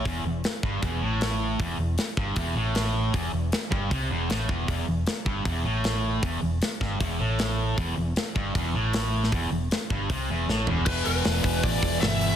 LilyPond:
<<
  \new Staff \with { instrumentName = "Lead electric guitar" } { \time 4/4 \key e \minor \tempo 4 = 156 r1 | r1 | r1 | r1 |
r1 | r1 | r1 | b'8 b'4. d''4 e''4 | }
  \new Staff \with { instrumentName = "Distorted electric guitar" } { \clef bass \time 4/4 \key e \minor e,8 e,8 r8 g,8 e,8 a,4. | e,8 e,8 r8 g,8 e,8 a,4. | e,8 e,8 r8 g,8 c8 e,8 a,8 e,8 | e,8 e,8 r8 g,8 e,8 a,4. |
e,8 e,8 r8 g,8 e,8 a,4. | e,8 e,8 r8 g,8 e,8 a,4. | e,8 e,8 r8 g,8 c8 e,8 a,8 e,8 | <e, b, e>1 | }
  \new Staff \with { instrumentName = "Fingered electric bass" } { \clef bass \time 4/4 \key e \minor e,,8 e,,8 r8 g,,8 e,,8 a,,4. | e,,8 e,,8 r8 g,,8 e,,8 a,,4. | e,,8 e,,8 r8 g,,8 c,8 e,,8 a,,8 e,,8 | e,,8 e,,8 r8 g,,8 e,,8 a,,4. |
e,,8 e,,8 r8 g,,8 e,,8 a,,4. | e,,8 e,,8 r8 g,,8 e,,8 a,,4. | e,,8 e,,8 r8 g,,8 c,8 e,,8 a,,8 e,,8 | e,,8 e,,8 e,,8 e,,8 a,,8 e,,8 g,,4 | }
  \new DrumStaff \with { instrumentName = "Drums" } \drummode { \time 4/4 <hho bd>4 <hho sn>8 bd8 <hho bd>4 <hho sn>4 | <hho bd>4 <hho sn>8 bd8 <hho bd>4 <hho sn>4 | <hho bd>4 <hho sn>8 bd8 <hho bd>4 <hho sn>8 bd8 | <hho bd>4 <hho sn>8 bd8 <hho bd>4 <hho sn>4 |
<hho bd>4 <hho sn>8 <bd sn>8 <hho bd>4 <hho sn>4 | <hho bd>4 <hho sn>8 bd8 <hho bd>4 <hho sn>8. sn16 | <hho bd>4 <hho sn>8 bd8 <hho bd>4 sn8 tomfh8 | <cymc bd>8 hho8 <hho sn>8 <hho bd>8 <hho bd>8 <hho bd>8 <hho sn>8 hho8 | }
>>